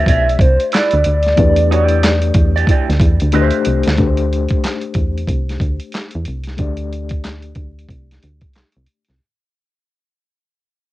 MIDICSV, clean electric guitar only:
0, 0, Header, 1, 2, 480
1, 0, Start_track
1, 0, Tempo, 652174
1, 1010, Time_signature, 4, 2, 24, 8
1, 8038, End_track
2, 0, Start_track
2, 0, Title_t, "Clean electric guitar"
2, 0, Program_c, 0, 27
2, 54, Note_on_c, 0, 64, 94
2, 62, Note_on_c, 0, 71, 105
2, 67, Note_on_c, 0, 74, 117
2, 192, Note_off_c, 0, 64, 0
2, 196, Note_off_c, 0, 71, 0
2, 199, Note_off_c, 0, 74, 0
2, 536, Note_on_c, 0, 64, 104
2, 544, Note_on_c, 0, 71, 110
2, 548, Note_on_c, 0, 74, 117
2, 673, Note_off_c, 0, 64, 0
2, 677, Note_off_c, 0, 71, 0
2, 680, Note_off_c, 0, 74, 0
2, 1259, Note_on_c, 0, 63, 86
2, 1266, Note_on_c, 0, 66, 102
2, 1271, Note_on_c, 0, 73, 112
2, 1355, Note_off_c, 0, 63, 0
2, 1355, Note_off_c, 0, 66, 0
2, 1355, Note_on_c, 0, 64, 86
2, 1355, Note_on_c, 0, 67, 102
2, 1359, Note_off_c, 0, 73, 0
2, 1359, Note_on_c, 0, 74, 112
2, 1480, Note_off_c, 0, 64, 0
2, 1483, Note_off_c, 0, 67, 0
2, 1485, Note_off_c, 0, 74, 0
2, 1883, Note_on_c, 0, 74, 64
2, 1891, Note_on_c, 0, 67, 59
2, 1896, Note_on_c, 0, 64, 54
2, 1950, Note_off_c, 0, 74, 0
2, 1954, Note_off_c, 0, 67, 0
2, 1956, Note_off_c, 0, 64, 0
2, 1978, Note_on_c, 0, 64, 89
2, 1988, Note_on_c, 0, 67, 107
2, 1995, Note_on_c, 0, 74, 104
2, 2115, Note_off_c, 0, 64, 0
2, 2119, Note_off_c, 0, 67, 0
2, 2123, Note_off_c, 0, 74, 0
2, 2456, Note_on_c, 0, 65, 79
2, 2464, Note_on_c, 0, 72, 94
2, 2468, Note_on_c, 0, 76, 108
2, 2621, Note_off_c, 0, 65, 0
2, 2624, Note_off_c, 0, 72, 0
2, 2626, Note_off_c, 0, 76, 0
2, 8038, End_track
0, 0, End_of_file